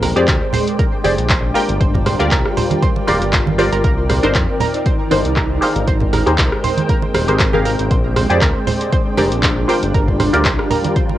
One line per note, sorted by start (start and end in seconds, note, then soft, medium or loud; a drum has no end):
0.00 0.13 A#1 medium
0.00 1.54 G#3 medium
0.00 0.49 C4 medium
0.00 2.48 D4 medium
0.00 0.49 A#4 medium
0.00 0.08 A#4 loud
0.00 1.51 C5 medium
0.00 5.58 D5 medium
0.00 1.54 G5 medium
0.00 4.56 G5 medium
0.00 cross-stick medium
0.00 open hi-hat loud
0.00 low conga medium
0.16 0.26 F2 loud
0.16 0.29 G4 medium
0.16 0.29 G#4 medium
0.16 0.29 C5 medium
0.16 0.30 D5 loud
0.16 closed hi-hat medium
0.23 1.55 G#3 medium
0.28 0.40 D2 medium
0.28 0.31 C5 medium
0.28 kick loud
0.28 clap loud
0.28 closed hi-hat medium
0.36 2.48 C5 medium
0.53 0.57 C5 loud
0.53 open hi-hat loud
0.53 low conga loud
0.67 closed hi-hat medium
0.79 0.84 A#4 loud
0.79 kick loud
0.79 closed hi-hat soft
1.04 1.16 F1 loud
1.04 1.52 G4 medium
1.04 1.52 G#4 medium
1.04 1.08 C5 medium
1.04 1.53 C5 medium
1.04 1.53 D5 medium
1.04 open hi-hat loud
1.04 muted conga medium
1.18 1.52 A#1 medium
1.18 closed hi-hat medium
1.29 1.33 C5 loud
1.29 kick loud
1.29 clap loud
1.29 closed hi-hat medium
1.54 3.82 G3 medium
1.54 2.16 F4 medium
1.54 4.56 F4 medium
1.54 3.82 F4 medium
1.54 2.17 G4 medium
1.54 1.60 A#4 loud
1.54 7.87 A#4 medium
1.54 2.17 A#4 medium
1.54 2.17 G5 medium
1.54 open hi-hat loud
1.69 1.79 G1 medium
1.69 closed hi-hat medium
1.69 muted conga soft
1.81 2.16 G1 loud
1.81 1.84 C5 medium
1.81 kick loud
1.81 closed hi-hat soft
1.95 kick medium
1.95 muted conga medium
2.05 4.56 A#4 medium
2.05 2.09 C5 loud
2.05 cross-stick medium
2.05 open hi-hat loud
2.05 low conga medium
2.19 2.30 D2 loud
2.19 2.32 F4 medium
2.19 2.33 G4 medium
2.19 2.33 A#4 medium
2.19 2.33 D5 loud
2.19 closed hi-hat medium
2.31 2.43 C2 medium
2.31 2.37 A#4 loud
2.31 kick loud
2.31 clap loud
2.31 closed hi-hat medium
2.45 cross-stick medium
2.57 2.60 C5 medium
2.57 open hi-hat loud
2.57 low conga medium
2.71 closed hi-hat medium
2.71 high conga medium
2.82 2.86 C5 loud
2.82 kick loud
2.82 closed hi-hat soft
2.96 muted conga medium
3.07 3.19 D1 loud
3.07 3.30 F4 medium
3.07 3.30 G4 medium
3.07 3.30 A#4 medium
3.07 3.30 D5 medium
3.07 3.13 C6 loud
3.07 cross-stick medium
3.07 open hi-hat loud
3.07 muted conga medium
3.07 high conga medium
3.22 3.69 G1 medium
3.22 closed hi-hat medium
3.22 muted conga soft
3.33 3.36 C6 medium
3.33 kick loud
3.33 clap loud
3.33 closed hi-hat medium
3.47 high conga medium
3.58 3.73 F4 medium
3.58 3.73 G4 medium
3.58 3.74 A#4 medium
3.58 3.64 C5 loud
3.58 3.74 D5 loud
3.58 open hi-hat loud
3.73 3.82 G1 medium
3.73 3.75 A#4 loud
3.73 closed hi-hat medium
3.84 4.20 C2 loud
3.84 5.60 D#3 medium
3.84 5.60 C4 medium
3.84 6.55 D#4 loud
3.84 3.89 A#4 loud
3.84 kick loud
3.84 closed hi-hat soft
4.09 4.13 C5 medium
4.09 cross-stick medium
4.09 open hi-hat loud
4.09 low conga medium
4.17 6.40 D5 medium
4.23 4.33 G1 loud
4.23 4.36 D4 loud
4.23 4.36 D#4 medium
4.23 4.36 A#4 medium
4.23 4.36 C5 loud
4.23 closed hi-hat medium
4.35 4.47 F2 medium
4.35 4.38 C5 loud
4.35 kick loud
4.35 clap loud
4.35 closed hi-hat medium
4.60 4.66 A#4 loud
4.60 open hi-hat medium
4.60 low conga medium
4.65 6.55 A#5 medium
4.74 closed hi-hat medium
4.86 4.89 C5 medium
4.86 kick loud
4.86 closed hi-hat soft
5.11 5.23 G1 loud
5.11 5.59 D4 medium
5.11 5.59 D#4 medium
5.11 5.59 A#4 medium
5.11 5.14 C5 loud
5.11 5.60 C5 medium
5.11 open hi-hat loud
5.11 muted conga medium
5.25 5.59 C2 medium
5.25 closed hi-hat medium
5.36 5.42 A#4 loud
5.36 kick loud
5.36 clap loud
5.36 closed hi-hat medium
5.61 7.89 G#3 medium
5.61 8.63 C4 medium
5.61 6.23 G4 medium
5.61 6.23 G#4 medium
5.61 6.24 A#4 medium
5.61 7.89 C5 loud
5.61 5.65 C5 medium
5.61 6.24 F5 medium
5.61 9.65 G5 medium
5.61 open hi-hat medium
5.76 5.86 G#1 medium
5.76 closed hi-hat medium
5.76 muted conga soft
5.87 6.23 G#1 loud
5.87 5.91 C5 loud
5.87 kick loud
5.87 closed hi-hat soft
5.96 8.63 A#4 loud
6.00 kick medium
6.00 muted conga medium
6.13 6.18 A#4 loud
6.13 cross-stick medium
6.13 open hi-hat loud
6.13 low conga medium
6.26 6.36 D#2 medium
6.26 6.39 G4 medium
6.26 6.39 G#4 medium
6.26 6.40 A#4 medium
6.26 6.40 C5 loud
6.26 closed hi-hat medium
6.38 6.50 C2 medium
6.38 6.41 C5 medium
6.38 kick loud
6.38 clap loud
6.38 closed hi-hat medium
6.52 cross-stick medium
6.64 6.67 C5 loud
6.64 11.18 G5 medium
6.64 open hi-hat medium
6.64 low conga medium
6.77 closed hi-hat medium
6.77 high conga medium
6.89 6.94 A#4 loud
6.89 kick loud
6.89 closed hi-hat medium
7.02 muted conga medium
7.14 7.26 D#1 loud
7.14 7.18 C5 medium
7.14 cross-stick loud
7.14 open hi-hat loud
7.14 muted conga medium
7.14 high conga medium
7.28 7.76 G#1 medium
7.28 7.49 G4 medium
7.28 7.50 G#4 medium
7.28 7.50 A#4 medium
7.28 7.50 C5 medium
7.28 closed hi-hat medium
7.28 muted conga soft
7.39 7.43 C5 loud
7.39 kick loud
7.39 clap loud
7.39 closed hi-hat medium
7.53 7.66 G4 loud
7.53 7.67 G#4 medium
7.53 7.67 A#4 medium
7.53 7.67 F5 loud
7.53 high conga medium
7.65 7.71 A#4 loud
7.65 open hi-hat medium
7.79 7.89 G#1 medium
7.79 closed hi-hat medium
7.91 8.27 A#1 loud
7.91 9.67 G#3 medium
7.91 10.55 D4 loud
7.91 9.67 C5 medium
7.91 7.94 C5 medium
7.91 11.18 D5 loud
7.91 kick loud
7.91 closed hi-hat medium
8.16 8.19 C5 loud
8.16 cross-stick medium
8.16 open hi-hat loud
8.16 low conga medium
8.30 8.40 F2 loud
8.30 8.43 G4 loud
8.30 8.43 G#4 medium
8.30 8.43 C5 medium
8.30 8.43 D5 loud
8.30 closed hi-hat medium
8.37 10.61 C5 medium
8.37 clap loud
8.42 8.53 D2 medium
8.42 8.47 A#4 loud
8.42 kick loud
8.42 closed hi-hat medium
8.67 8.70 C5 medium
8.67 open hi-hat medium
8.67 low conga loud
8.81 closed hi-hat medium
8.93 8.96 C5 loud
8.93 kick loud
8.93 closed hi-hat medium
9.17 9.30 F1 loud
9.17 9.66 G4 medium
9.17 9.66 G#4 medium
9.17 9.23 A#4 loud
9.17 9.66 C5 medium
9.17 9.66 D5 medium
9.17 open hi-hat loud
9.17 muted conga medium
9.32 9.66 A#1 medium
9.32 closed hi-hat medium
9.43 9.47 C5 medium
9.43 kick loud
9.43 clap loud
9.43 closed hi-hat medium
9.68 11.18 G3 medium
9.68 10.30 F4 medium
9.68 11.18 F4 medium
9.68 10.30 G4 medium
9.68 11.18 A#4 medium
9.68 10.30 A#4 medium
9.68 9.72 C5 loud
9.68 10.31 G5 medium
9.68 open hi-hat medium
9.82 9.92 G1 medium
9.82 closed hi-hat medium
9.82 muted conga soft
9.94 10.30 G1 loud
9.94 10.00 A#4 medium
9.94 kick loud
9.94 closed hi-hat soft
10.08 kick medium
10.20 10.23 C5 medium
10.20 cross-stick medium
10.20 open hi-hat loud
10.20 low conga medium
10.33 10.43 D2 medium
10.33 10.46 F4 medium
10.33 10.46 G4 medium
10.33 10.46 A#4 medium
10.33 10.47 D5 loud
10.33 closed hi-hat medium
10.45 10.57 C2 medium
10.45 10.48 C5 loud
10.45 kick loud
10.45 clap loud
10.45 closed hi-hat medium
10.54 11.18 A#4 medium
10.59 cross-stick medium
10.71 10.76 A#4 loud
10.71 open hi-hat medium
10.71 low conga loud
10.84 closed hi-hat medium
10.84 high conga medium
10.96 10.99 C5 medium
10.96 kick loud
10.96 closed hi-hat medium
10.96 swell medium
11.09 muted conga medium